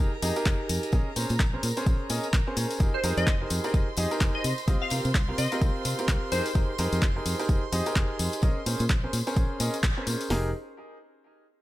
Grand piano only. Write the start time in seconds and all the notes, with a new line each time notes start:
Already playing: D#4 G4 G#4 A#4
0.22 D#4 G4 G#4 D#5
0.36 D#4 G4 G#4 A#4
0.93 C#4 G#4 A#4 D#5
1.16 C#4 G#4 A#4 C5
1.53 C#4 G#4 A#4 C5
1.77 C#4 G#4 A#4 C5
2.10 C#4 G#4 A#4 D#5
2.47 C#4 G#4 A#4 C5
2.57 C#4 G#4 A#4 C5
2.80 D#4 G4 G#4 A#4
3.04 D#4 G4 G#4 A#4
3.41 D#4 G4 G#4 A#4
3.64 D#4 G4 G#4 A#4
3.97 D#4 G4 G#4 D#5
4.11 D#4 G4 G#4 A#4
4.68 C4 F4 G4 D#5
4.91 C4 F4 G4 A#4
5.28 C4 F4 G4 A#4
5.52 C4 F4 G4 A#4
5.99 C4 F4 G4 A#4
6.32 D#4 G4 G#4 A#4
6.55 D#4 G4 G#4 A#4
6.79 D#4 G4 G#4 A#4
7.16 D#4 G4 G#4 A#4
7.39 D#4 G4 G#4 A#4
7.72 D#4 G4 G#4 D#5
7.86 D#4 G4 G#4 A#4
8.43 C#4 G#4 A#4 D#5
8.66 C#4 G#4 A#4 C5
9.04 C#4 G#4 A#4 C5
9.27 C#4 G#4 A#4 C5
9.60 C#4 G#4 A#4 D#5
9.97 C#4 G#4 A#4 C5
10.07 C#4 G#4 A#4 C5
10.30 D#4 G4 G#4 A#4